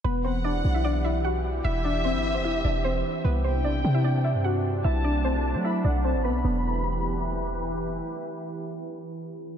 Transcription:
<<
  \new Staff \with { instrumentName = "Violin section" } { \time 4/4 \key e \minor \tempo 4 = 150 r8 fis''2~ fis''8 r4 | e''1 | r8 g''2~ g''8 r4 | a''2 b''8 fis''8 a''8 b''8 |
b''2. r4 | r1 | }
  \new Staff \with { instrumentName = "Synth pluck" } { \time 4/4 \key e \minor <b b'>8 <c' c''>8 <d' d''>8. <e' e''>16 <d' d''>8 <e' e''>8 <fis' fis''>8 r8 | <e' e''>8 <d' d''>8 <c' c''>8. <c' c''>16 <e' e''>8 <d' d''>8 <c' c''>8 r8 | <b b'>8 <c' c''>8 <d' d''>8. <e' e''>16 <d' d''>8 <e' e''>8 <fis' fis''>8 r8 | <e' e''>8 <d' d''>8 <c' c''>8. <c' c''>16 <e' e''>8 <d' d''>8 <c' c''>8 <b b'>8 |
b2. r4 | r1 | }
  \new Staff \with { instrumentName = "Analog synth pad" } { \time 4/4 \key e \minor <e e' g'>1~ | <e e' g'>1 | <c c' d'>1 | <fis a d'>1 |
<e e' g' b'>1~ | <e e' g' b'>1 | }
  \new Staff \with { instrumentName = "808-style bass" } { \clef bass \time 4/4 \key e \minor e,,4. b,,2~ b,,8 | e,,4~ e,,16 g,,8~ g,,32 e,,8~ e,,32 e,,4 r8 | c,4 b,,8 c4~ c16 g,4~ g,16 | b,,4.~ b,,16 fis8. b,,8. a,,16. b,,16. |
e,,1 | r1 | }
>>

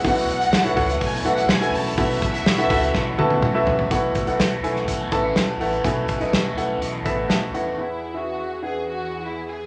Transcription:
<<
  \new Staff \with { instrumentName = "Violin section" } { \time 4/4 \key b \mixolydian \tempo 4 = 124 fis''2 gis''8 fis''8 gis''8 a''8 | e''2. r4 | r1 | r1 |
e'8. fis'4 gis'8 fis'8. e'8 gis'8 | }
  \new Staff \with { instrumentName = "Grand piano" } { \time 4/4 \key b \mixolydian <e' fis' a' b' fis''>4 r16 <e' fis' a' b' cis''>16 <e' fis' a' b' cis''>8. r16 <e' fis' a' b' fis''>8 r16 <e' fis' a' b' fis''>8 r16 | <e' fis' a' b' fis''>4 r16 <e' fis' a' b' fis''>16 <e' fis' a' b' fis''>8. r16 <e' fis' a' b' a''>8 r16 <e' fis' a' b' e''>8 r16 | <e' a' b' fis''>8 r16 <e' a' b' fis''>8 r16 <e' a' b' gis''>8. r16 <e' a' b' a''>8. r16 <e' a' b' fis''>16 r16 | <e' a' b' gis''>8 r16 <e' a' b' dis''>8 r16 <e' a' b' fis''>8. r16 <e' a' b' e''>8. r16 <e' a' b' fis''>16 r16 |
<e' gis' b' fis''>8 r16 <e' gis' b' e''>8. r16 <e' gis' b' fis''>4. r8. | }
  \new Staff \with { instrumentName = "Grand piano" } { \clef bass \time 4/4 \key b \mixolydian b,4. r2 r8 | b,4. r2 r8 | b,4. r2 r8 | b,4. r4 b''8 a''8 e''8 |
<e, e>1 | }
  \new Staff \with { instrumentName = "Overdriven electric guitar" } { \time 4/4 \key b \mixolydian <b, e a e' fis'>8. <a e' fis'>8. <e a e' fis'>8 <b, e a e' fis'>4 <e a e' fis'>4 | <b, e a e' fis'>8. <a e' fis'>8. <e a e' fis'>8 <b, e a e' fis'>4 <e a e' fis'>4 | <e a e' fis'>8. <a e' fis'>8 <a e' fis'>8. <b, e a e' fis'>8. <a e' fis'>8. <e a e' fis'>8 | <e a e' fis'>8. <a e' fis'>8 <a e' fis'>8. <b, e a e' fis'>8. <a e' fis'>8. <e a e' fis'>8 |
r1 | }
  \new Staff \with { instrumentName = "String section" } { \time 4/4 \key b \mixolydian <a b e'>1~ | <a b e'>1 | <a b e'>1~ | <a b e'>1 |
<e, e b fis' gis'>1 | }
  \new Staff \with { instrumentName = "Sub bass" } { \clef bass \time 4/4 \key b \mixolydian b,,8 b,,8 b,,8 cis,8 b,,8 b,,8 b,,8 b,,8 | b,,8 b,,8 b,,8 cis,8 b,,8 b,,8 b,,8 b,,8 | b,,8 r16 b,,16 b,,8 b,,8 b,,8 a,,8 b,,8 a,,8 | b,,8 r16 b,,16 b,,8 b,,8 b,,8 a,,8 b,,8 dis,,8 |
r1 | }
  \new DrumStaff \with { instrumentName = "Drums" } \drummode { \time 4/4 <hho hhp bd>16 <hho hhp>16 <hho hhp>16 <hho hhp>16 <hho hhp sn>16 <hho hhp>16 <hho hhp bd>16 <hho hhp>16 <hho hhp bd>16 <hho hhp>16 <hho hhp>16 <hho hhp>16 <hho hhp sn>16 <hho hhp>16 <hho hhp>16 <hho hhp>16 | <hho hhp bd>16 <hho hhp>16 <hho hhp bd>16 <hho hhp>16 <hho hhp sn>16 <hho hhp>16 <hho hhp bd>16 <hho hhp>16 <bd sn>8 tommh16 tommh16 toml8 tomfh16 tomfh16 | <hh bd>8 <hh bd>16 hh16 <hh sn>8 hh16 sn16 <hh bd>8 <hh bd>8 <hh sn>8 hho16 hh16 | <hh bd>8 <hh bd>16 hh16 <hh sn>8 hh8 hh8 <hh bd>8 <hh sn>8 hh8 |
r4 r4 r4 r4 | }
>>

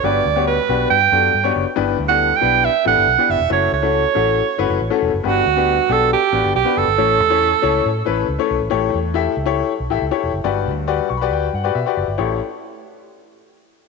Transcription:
<<
  \new Staff \with { instrumentName = "Alto saxophone" } { \time 4/4 \key a \mixolydian \tempo 4 = 138 d''4 b'4 g''4. r8 | \tuplet 3/2 { r4 fis''8~ fis''8 g''4 } e''8 fis''4 e''8 | cis''8 cis''2. r8 | fis'4. a'8 g'4 g'8 a'8~ |
a'2. r4 | r1 | r1 | r1 | }
  \new Staff \with { instrumentName = "Upright piano" } { \time 4/4 \key a \mixolydian <b d' fis' g' b'>8 r16 <b d' fis' g' cis''>8 r16 <b d' fis' g' b'>8 r8 <b d' fis' g' a'>8 r16 <b d' fis' g' cis''>8 r16 | <b d' e' g' b'>8 r16 <b d' e' g' a'>8 r16 <b d' e' g' b'>8 r8 <b d' e' g' a'>8 r16 <b d' e' g' d''>8 r16 | <a cis' e' fis' a'>8 r16 <a cis' e' fis' a'>8 r16 <a cis' e' fis' a'>8 r8 <a cis' e' fis' b'>8 r16 <a cis' e' fis' a'>8 r16 | <b d' fis' g' b'>8 r16 <b d' fis' g' b'>8 r16 <b d' fis' g' a'>8 r8 <b d' fis' g' b'>8 r16 <b d' fis' g' b'>8 r16 |
<a cis' e' a' cis''>8 r16 <a cis' e' a' cis''>8 r16 <a cis' e' a' cis''>8 r8 <a cis' e' a' b'>8 r16 <a cis' e' a' cis''>8 r16 | <e' g' a' cis''>8 r8 <e' g' a' e''>8 r16 <e' g' a' cis''>8 r8 <e' g' a' e''>16 r16 <e' g' a' cis''>8 r16 | <fis' g' b' d''>8 r8 <fis' g' b' d''>8 r16 <fis' g' b' d''>8 r8 <fis' g' b' d''>16 r16 <fis' g' b' d''>8 r16 | <e' g' a' cis''>8 r2. r8 | }
  \new Staff \with { instrumentName = "Upright piano" } { \clef bass \time 4/4 \key a \mixolydian g,4. r2 r8 | g,4. r2 r8 | r1 | g,4. r2 r8 |
a,4. r2 r8 | a,4. r2 r8 | g,4~ \tuplet 3/2 { g,8. cis'''16 b''8 } g''8 fis''8 e''8 d''8 | a,,8 r2. r8 | }
  \new Staff \with { instrumentName = "Fingered electric bass" } { \clef bass \time 4/4 \key a \mixolydian g,,8 d,4 b,,8 g,8 fis,8 g,8 fis,,16 r16 | g,,8 d,4 b,,8. r16 a,,16 g,,16 b,,16 r16 fis,,16 e,,16 | fis,,8 cis,4 a,,8. r16 g,,16 fis,,16 a,,16 r16 e,,16 fis,,16 | g,,8 d,4 b,,8. r16 a,,16 g,,16 b,,16 r16 fis,,16 g,,16 |
a,,8 e,4 cis,8 a,8 a,,8 cis,16 r16 b,,16 a,,16 | a,,8 e,4 cis,8. r16 b,,16 a,,16 cis,16 r16 e,,16 fis,,16 | g,,8 d,4 b,,8 d,8 g,8 b,16 r16 fis,,16 g,,16 | a,,8 r2. r8 | }
>>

